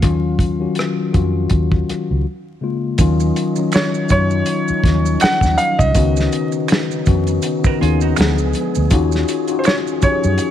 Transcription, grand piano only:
0.00 2.20 F5 medium
3.75 4.10 C#5 medium
4.12 5.18 C#5 medium
5.22 5.59 F#5 loud
5.58 5.79 F5 medium
5.79 6.49 D#5 loud
9.59 9.65 C5 medium
9.66 9.75 C#5 medium
10.03 10.51 C#5 medium

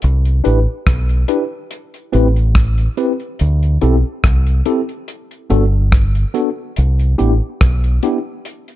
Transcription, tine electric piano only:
0.44 0.58 D4 medium
0.44 0.58 E4 medium
0.44 0.58 G4 medium
0.44 0.58 B4 loud
1.28 1.43 D4 medium
1.28 1.43 E4 medium
1.28 1.43 G4 medium
1.28 1.43 B4 medium
2.12 2.27 C4 medium
2.12 2.27 E4 medium
2.12 2.27 G4 medium
2.12 2.27 B4 medium
2.97 3.11 C4 medium
2.97 3.12 E4 medium
2.97 3.11 G4 medium
2.97 3.12 B4 medium
3.82 3.96 C4 medium
3.82 3.96 E4 medium
3.82 3.96 G4 medium
3.82 3.96 A4 medium
4.66 4.80 C4 medium
4.66 4.80 E4 medium
4.66 4.80 G4 medium
4.66 4.80 A4 loud
5.50 5.64 B3 medium
5.50 5.64 D4 medium
5.50 5.64 F#4 medium
5.50 5.64 A4 loud
6.34 6.48 B3 medium
6.34 6.48 D4 medium
6.34 6.48 F#4 medium
6.34 6.49 A4 medium
7.18 7.33 B3 medium
7.18 7.33 D4 medium
7.18 7.33 E4 medium
7.18 7.33 G4 medium
8.03 8.17 B3 medium
8.03 8.17 D4 medium
8.03 8.17 E4 medium
8.03 8.17 G4 medium

